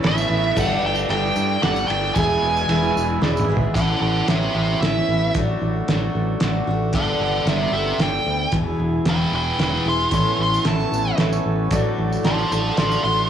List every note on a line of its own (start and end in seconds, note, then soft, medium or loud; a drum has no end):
0.00 0.56 E3 medium
0.00 0.58 C#4 medium
0.00 0.53 A4 medium
0.00 0.55 A4 medium
0.00 0.57 B4 medium
0.00 0.57 C#5 medium
0.04 0.25 A1 medium
0.04 0.56 B3 medium
0.04 0.57 C#4 medium
0.04 0.58 E4 medium
0.04 0.61 E5 medium
0.04 snare medium
0.04 ride medium
0.18 tambourine medium
0.30 0.51 A1 medium
0.55 0.77 G1 loud
0.55 1.08 G3 medium
0.55 1.08 A3 medium
0.55 2.14 D4 medium
0.55 1.10 D4 medium
0.55 2.14 G4 medium
0.55 1.00 G4 medium
0.55 1.10 G4 medium
0.55 2.14 A4 medium
0.55 1.00 A4 medium
0.55 1.00 D5 medium
0.55 kick loud
0.55 crash loud
0.55 tambourine loud
0.60 0.86 F#5 medium
0.70 tambourine soft
0.83 1.04 G1 medium
0.83 0.93 G5 medium
0.95 tambourine medium
1.09 1.30 G1 medium
1.09 1.61 G3 medium
1.09 1.62 A3 medium
1.09 1.63 D4 medium
1.09 1.43 G4 medium
1.09 1.64 G4 medium
1.09 1.43 A4 medium
1.09 1.43 D5 medium
1.09 1.62 G5 loud
1.09 ride medium
1.36 1.57 G2 medium
1.36 tambourine loud
1.62 1.84 G1 medium
1.62 2.16 G3 medium
1.62 2.16 A3 medium
1.62 2.17 D4 medium
1.62 2.17 G4 medium
1.62 2.18 G4 medium
1.62 2.18 A4 medium
1.62 2.17 D5 medium
1.62 1.87 F#5 medium
1.62 snare medium
1.62 ride medium
1.76 tambourine medium
1.88 2.10 G1 medium
1.88 2.14 G5 medium
1.88 ride medium
2.15 2.36 E1 medium
2.15 2.69 E2 medium
2.15 2.70 B2 medium
2.15 2.68 E3 medium
2.15 2.69 G#3 medium
2.15 2.70 B3 medium
2.15 3.75 E4 medium
2.15 2.70 G#4 medium
2.15 2.60 G#4 medium
2.15 3.75 G#4 medium
2.15 3.74 B4 medium
2.15 2.60 B4 medium
2.15 2.60 E5 medium
2.15 3.18 G#5 loud
2.15 kick loud
2.15 ride medium
2.15 tambourine medium
2.43 2.63 E1 medium
2.57 tambourine medium
2.69 2.89 E1 medium
2.69 3.20 E3 medium
2.69 3.22 G#3 medium
2.69 3.22 B3 medium
2.69 3.03 G#4 medium
2.69 3.24 G#4 medium
2.69 3.03 B4 medium
2.69 3.03 E5 medium
2.69 ride medium
2.69 tambourine soft
2.84 tambourine soft
2.96 3.16 E1 medium
2.96 tambourine medium
3.21 3.43 E1 medium
3.21 3.49 E3 medium
3.21 3.50 G#3 medium
3.21 3.49 B3 medium
3.21 3.76 G#4 medium
3.21 3.48 G#4 medium
3.21 3.76 B4 medium
3.21 3.76 D5 medium
3.21 3.48 B5 medium
3.21 snare medium
3.21 tambourine soft
3.37 mid tom medium
3.37 tambourine medium
3.49 3.69 G#1 medium
3.49 3.75 E3 soft
3.49 3.76 G#3 soft
3.49 3.75 B3 soft
3.49 3.76 G#4 medium
3.49 3.75 E5 medium
3.57 floor tom loud
3.74 3.94 A1 medium
3.74 4.29 A2 medium
3.74 4.27 E3 medium
3.74 4.28 B3 medium
3.74 5.34 C#4 medium
3.74 4.29 C#4 medium
3.74 4.30 E4 medium
3.74 4.00 A4 medium
3.74 5.33 A4 medium
3.74 5.33 B4 medium
3.74 4.01 F#5 medium
3.74 kick loud
3.74 closed hi-hat medium
4.01 4.20 A1 medium
4.01 4.27 A4 medium
4.01 4.28 F#5 medium
4.28 4.48 A1 medium
4.28 4.81 E3 medium
4.28 4.82 B3 medium
4.28 4.83 C#4 medium
4.28 4.83 E4 medium
4.28 4.53 G4 medium
4.28 4.54 E5 medium
4.28 snare medium
4.28 closed hi-hat medium
4.55 4.74 A1 medium
4.55 4.80 G4 medium
4.55 4.80 E5 medium
4.81 5.00 A1 medium
4.81 5.09 E3 medium
4.81 5.09 B3 medium
4.81 5.09 C#4 medium
4.81 5.33 E5 medium
4.81 snare medium
4.81 closed hi-hat medium
4.85 5.08 E4 medium
5.09 5.35 A1 medium
5.09 5.37 B3 soft
5.09 5.36 C#4 soft
5.09 5.36 E4 soft
5.34 5.54 A1 medium
5.34 5.89 A2 medium
5.34 5.87 F#3 medium
5.34 5.89 A3 medium
5.34 6.93 D4 medium
5.34 5.90 D4 medium
5.34 6.93 F#4 medium
5.34 5.90 F#4 medium
5.34 6.92 A4 medium
5.34 kick loud
5.34 closed hi-hat medium
5.62 5.80 A1 medium
5.88 6.08 A1 medium
5.88 6.40 F#3 medium
5.88 6.41 A3 medium
5.88 6.41 D4 medium
5.88 6.43 F#4 medium
5.88 snare medium
5.88 closed hi-hat medium
6.15 6.34 A1 medium
6.40 6.60 A1 medium
6.40 6.68 F#3 medium
6.40 6.69 A3 medium
6.40 6.68 D4 medium
6.40 6.66 F#4 medium
6.40 snare medium
6.40 closed hi-hat medium
6.67 6.95 A1 medium
6.67 6.96 A3 soft
6.67 6.95 D4 soft
6.67 6.94 F#4 medium
6.93 7.13 G1 medium
6.93 7.46 G3 medium
6.93 8.52 B3 medium
6.93 7.48 B3 medium
6.93 7.48 D4 medium
6.93 8.52 G4 medium
6.93 8.52 A4 medium
6.93 7.21 A4 medium
6.93 7.49 A4 medium
6.93 7.21 F#5 medium
6.93 kick loud
6.93 closed hi-hat medium
7.20 7.39 G1 medium
7.20 7.46 A4 medium
7.20 7.48 F#5 medium
7.46 7.65 G1 medium
7.46 7.74 G3 medium
7.46 7.74 B3 medium
7.46 7.75 D4 medium
7.46 7.72 G4 medium
7.46 7.73 E5 medium
7.46 snare medium
7.46 closed hi-hat medium
7.50 7.73 A4 medium
7.72 7.92 G1 medium
7.72 7.98 G4 medium
7.72 8.01 A4 soft
7.72 8.00 E5 medium
7.76 8.00 B3 soft
7.76 8.01 D4 soft
7.99 8.18 G1 medium
7.99 8.53 G3 soft
7.99 8.53 B3 medium
7.99 8.53 D4 medium
7.99 8.52 G5 medium
7.99 snare medium
7.99 closed hi-hat medium
8.04 8.54 A4 medium
8.26 8.45 D2 medium
8.52 8.72 E1 medium
8.52 9.06 E2 medium
8.52 9.07 B2 medium
8.52 9.06 E3 medium
8.52 10.11 B3 medium
8.52 9.07 B3 medium
8.52 9.08 E4 medium
8.52 10.11 E4 medium
8.52 9.07 G#4 medium
8.52 10.12 G#4 medium
8.52 kick loud
8.52 closed hi-hat medium
8.80 8.98 E1 medium
9.05 9.24 E1 medium
9.05 9.57 E3 medium
9.05 9.58 B3 medium
9.05 9.59 E4 medium
9.05 9.60 G#4 medium
9.05 9.34 B4 medium
9.05 snare medium
9.05 closed hi-hat medium
9.10 9.34 G5 loud
9.32 9.51 E1 medium
9.32 9.59 B4 medium
9.36 9.60 G5 medium
9.58 9.78 E1 medium
9.58 9.85 E3 medium
9.58 9.86 B3 medium
9.58 9.85 E4 medium
9.58 9.84 G#4 medium
9.58 snare medium
9.58 closed hi-hat medium
9.63 9.86 B4 medium
9.63 9.87 G5 medium
9.85 10.04 E1 medium
9.85 10.11 E3 soft
9.85 10.11 B3 soft
9.85 10.13 E4 soft
9.85 10.12 G#4 soft
9.85 10.12 E5 medium
9.85 10.13 C6 medium
10.11 10.31 A1 medium
10.11 10.65 A2 medium
10.11 10.63 E3 medium
10.11 10.64 B3 medium
10.11 11.70 B3 medium
10.11 10.65 C#4 medium
10.11 11.71 C#4 medium
10.11 10.55 A4 medium
10.11 10.67 A4 medium
10.11 11.71 A4 medium
10.11 10.56 B4 medium
10.11 10.56 C#5 medium
10.11 10.38 E5 medium
10.11 10.39 C6 medium
10.11 kick loud
10.11 closed hi-hat medium
10.11 tambourine medium
10.39 10.58 A1 medium
10.39 10.65 E5 medium
10.39 10.66 C6 medium
10.54 tambourine medium
10.64 10.84 A1 medium
10.64 10.92 E3 medium
10.64 10.92 B3 medium
10.64 10.92 C#4 medium
10.64 10.98 A4 medium
10.64 10.90 A4 medium
10.64 10.98 B4 medium
10.64 10.99 E5 medium
10.64 11.18 A5 loud
10.64 snare medium
10.64 closed hi-hat medium
10.80 tambourine soft
10.92 11.11 A1 medium
10.92 11.18 B3 soft
10.92 11.19 C#4 soft
10.92 11.18 A4 soft
10.92 tambourine medium
11.06 tambourine soft
11.17 11.38 A1 medium
11.17 11.71 E3 medium
11.17 11.72 B3 medium
11.17 11.72 C#4 medium
11.17 11.70 A4 medium
11.17 11.73 A4 medium
11.17 11.72 B4 medium
11.17 11.72 E5 medium
11.17 snare medium
11.17 closed hi-hat medium
11.33 tambourine medium
11.46 11.71 A1 medium
11.71 11.90 A1 medium
11.71 12.24 A2 medium
11.71 12.22 F#3 medium
11.71 12.24 A3 medium
11.71 13.28 D4 medium
11.71 12.25 D4 medium
11.71 13.28 F#4 medium
11.71 12.14 F#4 medium
11.71 12.14 A4 medium
11.71 13.29 A4 medium
11.71 12.26 A4 medium
11.71 12.14 D5 loud
11.71 kick loud
11.71 closed hi-hat medium
11.71 tambourine loud
11.98 12.17 A1 medium
12.12 tambourine medium
12.23 12.43 A1 medium
12.23 12.50 F#3 medium
12.23 12.51 A3 medium
12.23 12.51 D4 medium
12.23 12.57 F#4 medium
12.23 12.57 A4 medium
12.23 12.49 A4 medium
12.23 12.51 C5 medium
12.23 12.57 D5 medium
12.23 12.51 A5 medium
12.23 snare medium
12.23 closed hi-hat medium
12.40 tambourine soft
12.51 12.70 A1 medium
12.51 12.77 A3 soft
12.51 12.78 D4 soft
12.51 12.77 A4 soft
12.51 12.76 C5 medium
12.51 12.77 A5 medium
12.51 tambourine loud
12.66 tambourine soft
12.77 12.96 A1 medium
12.77 13.04 F#3 medium
12.77 13.04 A3 medium
12.77 13.04 D4 medium
12.77 13.30 F#4 medium
12.77 13.27 A4 medium
12.77 13.03 A4 medium
12.77 13.02 C5 medium
12.77 13.30 D5 medium
12.77 13.04 A5 medium
12.77 snare medium
12.77 closed hi-hat medium
12.91 tambourine medium
13.03 13.30 A1 medium
13.03 13.30 D4 soft
13.03 13.30 A4 soft
13.03 13.28 E5 medium
13.03 13.30 C6 loud
13.07 13.30 A3 soft